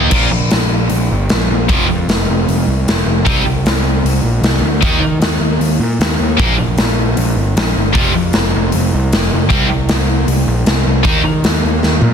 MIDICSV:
0, 0, Header, 1, 4, 480
1, 0, Start_track
1, 0, Tempo, 391645
1, 146, Time_signature, 4, 2, 24, 8
1, 8786, Tempo, 387347
1, 14943, End_track
2, 0, Start_track
2, 0, Title_t, "Distorted electric guitar"
2, 0, Program_c, 0, 30
2, 0, Note_on_c, 0, 51, 90
2, 0, Note_on_c, 0, 58, 94
2, 0, Note_on_c, 0, 63, 98
2, 128, Note_off_c, 0, 51, 0
2, 128, Note_off_c, 0, 58, 0
2, 133, Note_on_c, 0, 46, 81
2, 135, Note_on_c, 0, 53, 72
2, 138, Note_off_c, 0, 63, 0
2, 143, Note_on_c, 0, 58, 75
2, 332, Note_off_c, 0, 46, 0
2, 333, Note_off_c, 0, 53, 0
2, 337, Note_off_c, 0, 58, 0
2, 2068, Note_on_c, 0, 41, 83
2, 2073, Note_on_c, 0, 48, 85
2, 2083, Note_on_c, 0, 53, 90
2, 2262, Note_off_c, 0, 41, 0
2, 2265, Note_off_c, 0, 48, 0
2, 2270, Note_off_c, 0, 53, 0
2, 3990, Note_on_c, 0, 48, 87
2, 3993, Note_on_c, 0, 55, 74
2, 3998, Note_on_c, 0, 60, 89
2, 4185, Note_off_c, 0, 48, 0
2, 4187, Note_off_c, 0, 55, 0
2, 4189, Note_off_c, 0, 60, 0
2, 5895, Note_on_c, 0, 51, 80
2, 5911, Note_on_c, 0, 58, 76
2, 5911, Note_on_c, 0, 63, 90
2, 6097, Note_off_c, 0, 51, 0
2, 6105, Note_off_c, 0, 58, 0
2, 6105, Note_off_c, 0, 63, 0
2, 7809, Note_on_c, 0, 46, 87
2, 7811, Note_on_c, 0, 53, 86
2, 7825, Note_on_c, 0, 58, 87
2, 8011, Note_off_c, 0, 46, 0
2, 8012, Note_off_c, 0, 53, 0
2, 8019, Note_off_c, 0, 58, 0
2, 9729, Note_on_c, 0, 41, 74
2, 9741, Note_on_c, 0, 48, 95
2, 9745, Note_on_c, 0, 53, 93
2, 9933, Note_off_c, 0, 41, 0
2, 9939, Note_off_c, 0, 48, 0
2, 9941, Note_off_c, 0, 53, 0
2, 11666, Note_on_c, 0, 48, 82
2, 11675, Note_on_c, 0, 55, 91
2, 11676, Note_on_c, 0, 60, 89
2, 11864, Note_off_c, 0, 48, 0
2, 11868, Note_off_c, 0, 55, 0
2, 11868, Note_off_c, 0, 60, 0
2, 13575, Note_on_c, 0, 51, 86
2, 13580, Note_on_c, 0, 58, 78
2, 13588, Note_on_c, 0, 63, 91
2, 13776, Note_off_c, 0, 51, 0
2, 13779, Note_off_c, 0, 58, 0
2, 13783, Note_off_c, 0, 63, 0
2, 14943, End_track
3, 0, Start_track
3, 0, Title_t, "Picked electric bass"
3, 0, Program_c, 1, 34
3, 142, Note_on_c, 1, 34, 76
3, 363, Note_off_c, 1, 34, 0
3, 402, Note_on_c, 1, 34, 68
3, 614, Note_off_c, 1, 34, 0
3, 641, Note_on_c, 1, 34, 82
3, 1073, Note_off_c, 1, 34, 0
3, 1109, Note_on_c, 1, 34, 68
3, 1328, Note_off_c, 1, 34, 0
3, 1370, Note_on_c, 1, 31, 82
3, 1580, Note_off_c, 1, 31, 0
3, 1608, Note_on_c, 1, 34, 84
3, 1819, Note_off_c, 1, 34, 0
3, 1839, Note_on_c, 1, 34, 90
3, 2054, Note_off_c, 1, 34, 0
3, 2081, Note_on_c, 1, 29, 81
3, 2296, Note_off_c, 1, 29, 0
3, 2318, Note_on_c, 1, 41, 76
3, 2535, Note_off_c, 1, 41, 0
3, 2552, Note_on_c, 1, 29, 87
3, 2772, Note_off_c, 1, 29, 0
3, 2809, Note_on_c, 1, 29, 84
3, 3021, Note_off_c, 1, 29, 0
3, 3040, Note_on_c, 1, 29, 68
3, 3257, Note_off_c, 1, 29, 0
3, 3278, Note_on_c, 1, 36, 88
3, 3495, Note_off_c, 1, 36, 0
3, 3514, Note_on_c, 1, 29, 84
3, 3734, Note_off_c, 1, 29, 0
3, 3745, Note_on_c, 1, 29, 84
3, 4011, Note_off_c, 1, 29, 0
3, 4011, Note_on_c, 1, 36, 83
3, 4223, Note_off_c, 1, 36, 0
3, 4234, Note_on_c, 1, 36, 79
3, 4454, Note_off_c, 1, 36, 0
3, 4466, Note_on_c, 1, 36, 85
3, 4908, Note_off_c, 1, 36, 0
3, 4951, Note_on_c, 1, 36, 81
3, 5172, Note_off_c, 1, 36, 0
3, 5185, Note_on_c, 1, 34, 82
3, 5408, Note_off_c, 1, 34, 0
3, 5416, Note_on_c, 1, 36, 88
3, 5639, Note_off_c, 1, 36, 0
3, 5646, Note_on_c, 1, 38, 91
3, 5878, Note_off_c, 1, 38, 0
3, 5919, Note_on_c, 1, 39, 83
3, 6127, Note_off_c, 1, 39, 0
3, 6134, Note_on_c, 1, 51, 74
3, 6362, Note_off_c, 1, 51, 0
3, 6369, Note_on_c, 1, 39, 86
3, 6599, Note_off_c, 1, 39, 0
3, 6615, Note_on_c, 1, 39, 81
3, 6841, Note_off_c, 1, 39, 0
3, 6860, Note_on_c, 1, 39, 79
3, 7084, Note_off_c, 1, 39, 0
3, 7101, Note_on_c, 1, 46, 85
3, 7324, Note_off_c, 1, 46, 0
3, 7346, Note_on_c, 1, 39, 90
3, 7566, Note_off_c, 1, 39, 0
3, 7594, Note_on_c, 1, 39, 91
3, 7810, Note_off_c, 1, 39, 0
3, 7839, Note_on_c, 1, 34, 82
3, 8053, Note_off_c, 1, 34, 0
3, 8083, Note_on_c, 1, 34, 82
3, 8294, Note_off_c, 1, 34, 0
3, 8315, Note_on_c, 1, 34, 82
3, 8747, Note_off_c, 1, 34, 0
3, 8796, Note_on_c, 1, 34, 73
3, 9011, Note_off_c, 1, 34, 0
3, 9030, Note_on_c, 1, 31, 81
3, 9248, Note_off_c, 1, 31, 0
3, 9273, Note_on_c, 1, 34, 96
3, 9491, Note_off_c, 1, 34, 0
3, 9523, Note_on_c, 1, 31, 85
3, 9736, Note_off_c, 1, 31, 0
3, 9758, Note_on_c, 1, 29, 79
3, 9974, Note_off_c, 1, 29, 0
3, 10002, Note_on_c, 1, 41, 82
3, 10216, Note_off_c, 1, 41, 0
3, 10252, Note_on_c, 1, 29, 87
3, 10462, Note_off_c, 1, 29, 0
3, 10501, Note_on_c, 1, 29, 89
3, 10708, Note_off_c, 1, 29, 0
3, 10742, Note_on_c, 1, 29, 73
3, 10948, Note_off_c, 1, 29, 0
3, 10983, Note_on_c, 1, 36, 90
3, 11189, Note_off_c, 1, 36, 0
3, 11228, Note_on_c, 1, 29, 89
3, 11432, Note_off_c, 1, 29, 0
3, 11464, Note_on_c, 1, 29, 88
3, 11684, Note_off_c, 1, 29, 0
3, 11684, Note_on_c, 1, 36, 88
3, 11899, Note_off_c, 1, 36, 0
3, 11935, Note_on_c, 1, 36, 83
3, 12146, Note_off_c, 1, 36, 0
3, 12178, Note_on_c, 1, 36, 93
3, 12605, Note_off_c, 1, 36, 0
3, 12632, Note_on_c, 1, 36, 77
3, 12852, Note_off_c, 1, 36, 0
3, 12880, Note_on_c, 1, 34, 91
3, 13096, Note_off_c, 1, 34, 0
3, 13118, Note_on_c, 1, 36, 101
3, 13335, Note_off_c, 1, 36, 0
3, 13365, Note_on_c, 1, 36, 94
3, 13578, Note_off_c, 1, 36, 0
3, 13599, Note_on_c, 1, 39, 80
3, 13815, Note_off_c, 1, 39, 0
3, 13827, Note_on_c, 1, 51, 74
3, 14047, Note_off_c, 1, 51, 0
3, 14084, Note_on_c, 1, 39, 84
3, 14296, Note_off_c, 1, 39, 0
3, 14322, Note_on_c, 1, 39, 87
3, 14534, Note_off_c, 1, 39, 0
3, 14560, Note_on_c, 1, 39, 74
3, 14771, Note_off_c, 1, 39, 0
3, 14780, Note_on_c, 1, 46, 89
3, 14943, Note_off_c, 1, 46, 0
3, 14943, End_track
4, 0, Start_track
4, 0, Title_t, "Drums"
4, 135, Note_on_c, 9, 49, 90
4, 144, Note_on_c, 9, 36, 104
4, 257, Note_off_c, 9, 49, 0
4, 267, Note_off_c, 9, 36, 0
4, 621, Note_on_c, 9, 46, 47
4, 631, Note_on_c, 9, 38, 97
4, 744, Note_off_c, 9, 46, 0
4, 754, Note_off_c, 9, 38, 0
4, 1097, Note_on_c, 9, 46, 46
4, 1220, Note_off_c, 9, 46, 0
4, 1586, Note_on_c, 9, 46, 43
4, 1596, Note_on_c, 9, 38, 99
4, 1708, Note_off_c, 9, 46, 0
4, 1718, Note_off_c, 9, 38, 0
4, 2069, Note_on_c, 9, 46, 50
4, 2077, Note_on_c, 9, 36, 114
4, 2192, Note_off_c, 9, 46, 0
4, 2199, Note_off_c, 9, 36, 0
4, 2560, Note_on_c, 9, 46, 46
4, 2570, Note_on_c, 9, 38, 96
4, 2683, Note_off_c, 9, 46, 0
4, 2693, Note_off_c, 9, 38, 0
4, 3047, Note_on_c, 9, 46, 43
4, 3169, Note_off_c, 9, 46, 0
4, 3530, Note_on_c, 9, 46, 51
4, 3540, Note_on_c, 9, 38, 106
4, 3653, Note_off_c, 9, 46, 0
4, 3662, Note_off_c, 9, 38, 0
4, 4001, Note_on_c, 9, 36, 116
4, 4008, Note_on_c, 9, 46, 52
4, 4124, Note_off_c, 9, 36, 0
4, 4131, Note_off_c, 9, 46, 0
4, 4484, Note_on_c, 9, 46, 48
4, 4494, Note_on_c, 9, 38, 102
4, 4607, Note_off_c, 9, 46, 0
4, 4616, Note_off_c, 9, 38, 0
4, 4973, Note_on_c, 9, 46, 49
4, 5096, Note_off_c, 9, 46, 0
4, 5437, Note_on_c, 9, 46, 46
4, 5446, Note_on_c, 9, 38, 106
4, 5559, Note_off_c, 9, 46, 0
4, 5569, Note_off_c, 9, 38, 0
4, 5913, Note_on_c, 9, 46, 49
4, 5914, Note_on_c, 9, 36, 107
4, 6035, Note_off_c, 9, 46, 0
4, 6036, Note_off_c, 9, 36, 0
4, 6393, Note_on_c, 9, 46, 49
4, 6403, Note_on_c, 9, 38, 103
4, 6515, Note_off_c, 9, 46, 0
4, 6525, Note_off_c, 9, 38, 0
4, 6877, Note_on_c, 9, 46, 50
4, 6999, Note_off_c, 9, 46, 0
4, 7363, Note_on_c, 9, 46, 47
4, 7373, Note_on_c, 9, 38, 107
4, 7485, Note_off_c, 9, 46, 0
4, 7495, Note_off_c, 9, 38, 0
4, 7838, Note_on_c, 9, 36, 113
4, 7849, Note_on_c, 9, 46, 51
4, 7961, Note_off_c, 9, 36, 0
4, 7971, Note_off_c, 9, 46, 0
4, 8305, Note_on_c, 9, 46, 55
4, 8315, Note_on_c, 9, 38, 104
4, 8427, Note_off_c, 9, 46, 0
4, 8437, Note_off_c, 9, 38, 0
4, 8788, Note_on_c, 9, 46, 51
4, 8912, Note_off_c, 9, 46, 0
4, 9281, Note_on_c, 9, 46, 48
4, 9291, Note_on_c, 9, 38, 100
4, 9405, Note_off_c, 9, 46, 0
4, 9415, Note_off_c, 9, 38, 0
4, 9755, Note_on_c, 9, 36, 109
4, 9759, Note_on_c, 9, 46, 50
4, 9879, Note_off_c, 9, 36, 0
4, 9883, Note_off_c, 9, 46, 0
4, 10225, Note_on_c, 9, 46, 50
4, 10235, Note_on_c, 9, 38, 107
4, 10349, Note_off_c, 9, 46, 0
4, 10359, Note_off_c, 9, 38, 0
4, 10710, Note_on_c, 9, 46, 46
4, 10834, Note_off_c, 9, 46, 0
4, 11211, Note_on_c, 9, 46, 49
4, 11220, Note_on_c, 9, 38, 98
4, 11334, Note_off_c, 9, 46, 0
4, 11344, Note_off_c, 9, 38, 0
4, 11679, Note_on_c, 9, 36, 111
4, 11680, Note_on_c, 9, 46, 49
4, 11803, Note_off_c, 9, 36, 0
4, 11804, Note_off_c, 9, 46, 0
4, 12154, Note_on_c, 9, 46, 50
4, 12164, Note_on_c, 9, 38, 115
4, 12278, Note_off_c, 9, 46, 0
4, 12288, Note_off_c, 9, 38, 0
4, 12642, Note_on_c, 9, 46, 52
4, 12766, Note_off_c, 9, 46, 0
4, 13117, Note_on_c, 9, 46, 51
4, 13127, Note_on_c, 9, 38, 101
4, 13241, Note_off_c, 9, 46, 0
4, 13251, Note_off_c, 9, 38, 0
4, 13594, Note_on_c, 9, 36, 111
4, 13594, Note_on_c, 9, 46, 50
4, 13718, Note_off_c, 9, 36, 0
4, 13718, Note_off_c, 9, 46, 0
4, 14078, Note_on_c, 9, 46, 49
4, 14088, Note_on_c, 9, 38, 111
4, 14202, Note_off_c, 9, 46, 0
4, 14212, Note_off_c, 9, 38, 0
4, 14565, Note_on_c, 9, 38, 59
4, 14689, Note_off_c, 9, 38, 0
4, 14793, Note_on_c, 9, 48, 58
4, 14917, Note_off_c, 9, 48, 0
4, 14943, End_track
0, 0, End_of_file